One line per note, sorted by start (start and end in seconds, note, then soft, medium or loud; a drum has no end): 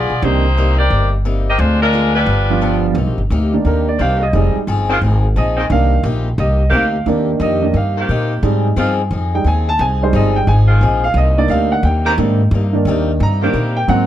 0.00 0.12 G3 medium
0.00 0.12 B3 medium
0.00 0.23 B3 medium
0.00 0.12 F4 medium
0.00 0.23 F4 medium
0.00 0.13 G#4 medium
0.00 0.23 G#4 medium
0.00 0.23 D5 loud
0.10 0.21 B1 medium
0.22 0.87 C2 loud
0.22 0.46 C3 soft
0.22 0.42 D#3 medium
0.22 0.46 G3 soft
0.22 0.43 A#3 medium
0.22 0.47 A#3 soft
0.22 0.80 A#3 medium
0.22 0.43 C4 medium
0.22 0.43 D4 medium
0.22 0.80 D#4 medium
0.22 0.47 D#4 soft
0.22 0.43 G4 medium
0.22 0.77 G4 medium
0.22 0.80 C5 medium
0.57 0.80 C3 medium
0.57 0.81 G3 medium
0.57 0.81 A#3 medium
0.57 0.81 D#4 medium
0.78 1.11 C4 medium
0.78 1.11 G4 medium
0.78 1.10 A#4 medium
0.78 1.10 D5 medium
0.90 1.56 G1 medium
0.90 1.14 C3 soft
0.90 1.15 G3 soft
0.90 1.15 A#3 soft
0.90 1.16 D#4 soft
1.25 1.49 C3 medium
1.25 1.49 G3 medium
1.25 1.49 A#3 medium
1.25 1.49 D#4 medium
1.49 1.60 C4 medium
1.49 1.60 G4 medium
1.49 1.60 A#4 medium
1.49 1.60 D#5 loud
1.59 2.24 D2 loud
1.59 1.83 D3 medium
1.59 1.81 G#3 medium
1.59 1.83 G#3 soft
1.59 1.83 C4 soft
1.59 1.81 D4 medium
1.59 1.82 F4 medium
1.59 1.84 F4 soft
1.59 1.81 C5 medium
1.82 2.14 G#3 medium
1.82 2.14 D4 medium
1.82 2.14 F4 medium
1.82 2.14 A#4 loud
1.93 2.17 D3 medium
1.93 2.17 G#3 medium
1.93 2.17 C4 medium
1.93 2.18 F4 medium
2.15 2.80 G3 medium
2.15 2.80 D4 medium
2.15 2.80 F4 medium
2.15 2.80 B4 medium
2.26 2.92 G1 medium
2.26 2.51 G2 soft
2.26 2.52 F3 soft
2.26 2.52 B3 soft
2.26 2.52 D4 medium
2.50 2.94 F3 medium
2.50 2.94 G3 medium
2.50 2.94 B3 medium
2.50 2.94 D4 medium
2.50 2.94 F4 medium
2.61 2.85 G2 medium
2.61 2.85 F3 medium
2.61 2.85 B3 medium
2.61 2.86 D4 medium
2.95 3.06 C2 loud
2.95 3.20 C3 soft
2.95 3.20 A#3 soft
2.95 3.21 D#4 medium
2.99 3.21 G4 medium
3.06 3.17 A#1 medium
3.18 3.29 G1 medium
3.30 3.64 D2 medium
3.30 3.54 C3 medium
3.30 3.55 A#3 medium
3.30 3.55 D#4 medium
3.30 3.55 G4 medium
3.53 3.97 D#3 soft
3.53 3.97 A#3 soft
3.53 3.97 D4 medium
3.65 3.98 D#2 medium
3.65 3.88 C3 soft
3.65 3.89 A#3 soft
3.65 3.89 D#4 medium
3.65 3.89 G4 soft
3.65 3.87 A#4 medium
3.89 3.99 D5 medium
3.98 4.32 C2 medium
3.98 4.23 C3 medium
3.98 4.33 D#3 medium
3.98 4.33 A#3 medium
3.98 4.23 A#3 medium
3.98 4.33 C4 medium
3.98 4.23 D#4 medium
3.98 4.33 G4 medium
3.98 4.24 G4 medium
3.98 4.22 F5 medium
4.22 4.54 D#5 medium
4.33 4.54 F1 loud
4.33 4.57 F3 soft
4.33 4.59 G3 medium
4.33 4.59 G#3 soft
4.33 4.57 C4 soft
4.33 4.60 D#4 medium
4.33 4.58 D#4 soft
4.33 4.58 G#4 medium
4.55 muted upright bass stroke soft
4.67 5.00 G1 loud
4.67 4.91 F3 medium
4.67 4.91 C4 medium
4.67 4.92 D#4 medium
4.67 4.92 G#4 medium
4.89 4.98 D#3 loud
4.89 4.98 G#3 medium
4.89 4.97 C4 medium
4.89 4.97 F4 loud
5.02 5.35 G#1 medium
5.02 5.25 F3 soft
5.02 5.26 C4 medium
5.02 5.26 D#4 medium
5.02 5.26 G#4 medium
5.36 5.69 A#1 medium
5.36 5.59 F3 medium
5.36 5.60 C4 medium
5.36 5.60 D#4 medium
5.36 5.60 G#4 medium
5.36 5.68 D#5 medium
5.56 5.65 D#3 medium
5.56 5.65 A#3 medium
5.56 5.65 C4 medium
5.56 5.65 D#4 medium
5.70 6.03 C2 loud
5.70 5.93 C3 medium
5.70 5.96 D#3 soft
5.70 5.94 A#3 soft
5.70 5.96 A#3 soft
5.70 5.96 D4 medium
5.70 5.94 D#4 soft
5.70 5.94 G4 medium
5.70 6.03 F5 medium
6.03 6.37 A#1 loud
6.03 6.27 C3 medium
6.03 6.28 A#3 medium
6.03 6.28 D#4 medium
6.03 6.28 G4 medium
6.38 6.70 C2 loud
6.38 6.61 C3 soft
6.38 6.62 A#3 medium
6.38 6.62 D#4 soft
6.38 6.63 G4 medium
6.38 6.70 D#5 medium
6.69 7.05 D2 medium
6.69 6.96 C3 medium
6.69 6.85 D#3 medium
6.69 6.86 A#3 medium
6.69 6.86 C4 medium
6.69 6.96 D#4 medium
6.69 6.86 G4 loud
6.73 6.96 A#3 medium
6.73 6.97 G4 medium
6.73 7.05 F5 medium
7.06 7.39 D#2 medium
7.06 7.30 C3 soft
7.06 7.60 D#3 medium
7.06 7.60 A#3 medium
7.06 7.30 A#3 soft
7.06 7.61 D4 medium
7.06 7.31 D#4 medium
7.06 7.31 G4 medium
7.40 7.73 F2 loud
7.40 7.64 C3 medium
7.40 7.64 A#3 medium
7.40 7.64 D#4 medium
7.40 7.64 G4 medium
7.40 7.73 D#5 medium
7.62 7.73 D#3 soft
7.62 7.73 A#3 soft
7.62 7.73 D4 soft
7.74 8.07 G2 medium
7.74 7.98 C3 soft
7.74 7.98 A#3 soft
7.74 7.99 D#4 soft
7.74 7.99 G4 soft
7.74 8.08 F5 medium
7.97 8.41 D#3 medium
7.97 8.41 A#3 medium
7.97 8.41 C4 medium
7.97 8.41 G4 loud
8.09 8.42 A#2 medium
8.09 8.32 C3 medium
8.09 8.33 A#3 medium
8.09 8.33 D#4 medium
8.09 8.33 G4 medium
8.42 8.76 G#2 loud
8.42 8.66 F3 medium
8.42 8.68 G3 medium
8.42 8.69 G#3 soft
8.42 8.67 C4 medium
8.42 8.69 D#4 medium
8.42 8.67 D#4 medium
8.42 8.67 G#4 medium
8.76 9.10 G2 medium
8.76 8.92 D#3 medium
8.76 9.00 F3 medium
8.76 8.92 G#3 medium
8.76 8.91 C4 medium
8.76 9.01 C4 medium
8.76 9.01 D#4 medium
8.76 8.92 F4 medium
8.76 9.01 G#4 medium
9.11 9.44 F2 medium
9.11 9.34 F3 soft
9.11 9.35 C4 medium
9.11 9.35 D#4 medium
9.11 9.36 G#4 medium
9.34 9.45 G3 soft
9.34 9.45 G#3 soft
9.34 9.45 D#4 soft
9.34 9.46 G5 medium
9.44 9.78 D#2 medium
9.44 9.69 F3 medium
9.44 9.69 C4 medium
9.44 9.69 D#4 medium
9.44 9.69 G#4 medium
9.44 9.68 G#5 medium
9.69 9.80 A5 medium
9.79 10.12 C2 loud
9.79 10.03 F3 soft
9.79 10.03 C4 soft
9.79 10.04 D#4 soft
9.79 10.04 G#4 soft
9.79 10.02 G#5 medium
10.02 10.46 G3 medium
10.02 10.46 G#3 soft
10.02 10.46 D#4 soft
10.02 10.14 C5 medium
10.13 10.46 G1 loud
10.13 10.37 F3 medium
10.13 10.38 C4 medium
10.13 10.38 D#4 medium
10.13 10.38 G#4 medium
10.13 10.36 D#5 medium
10.36 10.47 G5 medium
10.47 10.80 G#1 medium
10.47 10.71 F3 soft
10.47 10.72 C4 medium
10.47 10.72 D#4 soft
10.47 10.72 G#4 medium
10.47 11.00 G#5 medium
10.68 11.13 D#3 medium
10.68 11.12 G#3 medium
10.68 11.13 C4 medium
10.68 11.13 F4 loud
10.81 11.13 A#1 medium
10.81 11.05 F3 medium
10.81 11.05 C4 medium
10.81 11.06 D#4 medium
10.81 11.06 G#4 medium
11.04 11.16 F5 medium
11.14 11.48 C2 loud
11.14 11.39 C3 soft
11.14 11.40 G3 soft
11.14 11.40 A#3 soft
11.14 11.38 D#5 medium
11.18 11.41 D#4 medium
11.38 11.82 A#3 soft
11.38 11.82 D4 medium
11.38 11.82 D#4 medium
11.38 11.50 D5 medium
11.48 11.82 D2 medium
11.48 11.73 C3 medium
11.48 11.74 G3 medium
11.48 11.74 A#3 medium
11.48 11.74 D#4 medium
11.48 11.71 F5 medium
11.72 11.84 F#5 medium
11.83 12.17 D#2 loud
11.83 12.08 C3 medium
11.83 12.08 G3 medium
11.83 12.09 A#3 medium
11.83 12.09 D#4 medium
11.83 12.06 G5 medium
12.05 12.14 D#3 loud
12.05 12.14 A#3 medium
12.05 12.14 C4 medium
12.05 12.14 G4 loud
12.05 12.13 A#5 medium
12.18 12.51 G#2 loud
12.18 12.41 C3 medium
12.18 12.38 D#3 soft
12.18 12.42 G3 medium
12.18 12.38 A#3 soft
12.18 12.42 A#3 medium
12.18 12.38 D4 soft
12.18 12.42 D#4 medium
12.51 12.85 G2 loud
12.51 12.76 C3 medium
12.51 12.76 G3 soft
12.51 12.77 A#3 medium
12.51 12.77 D#4 medium
12.73 13.17 D#3 medium
12.73 13.18 A#3 soft
12.73 13.18 D4 medium
12.85 13.19 D#2 loud
12.85 13.10 C3 medium
12.85 13.11 G3 medium
12.85 13.11 A#3 medium
12.89 13.11 D#4 medium
13.20 13.53 G2 loud
13.20 13.44 C3 soft
13.20 13.44 G3 soft
13.20 13.45 A#3 soft
13.20 13.45 D#4 medium
13.20 13.74 A#5 medium
13.41 13.85 D#3 medium
13.41 13.53 D#3 soft
13.41 13.86 A#3 medium
13.41 13.53 A#3 soft
13.41 13.86 C4 medium
13.41 13.54 D4 soft
13.41 13.86 G4 loud
13.54 13.87 A#2 medium
13.54 13.78 C3 medium
13.54 13.78 G3 medium
13.54 13.78 A#3 medium
13.54 13.79 D#4 medium
13.77 13.88 G5 medium
13.88 14.06 G#2 medium
13.88 14.06 G#2 soft
13.88 14.06 F#3 medium
13.88 14.06 F#3 soft
13.88 14.06 A#3 soft
13.88 14.06 C4 medium
13.88 14.06 D#4 medium
13.88 14.06 F#5 medium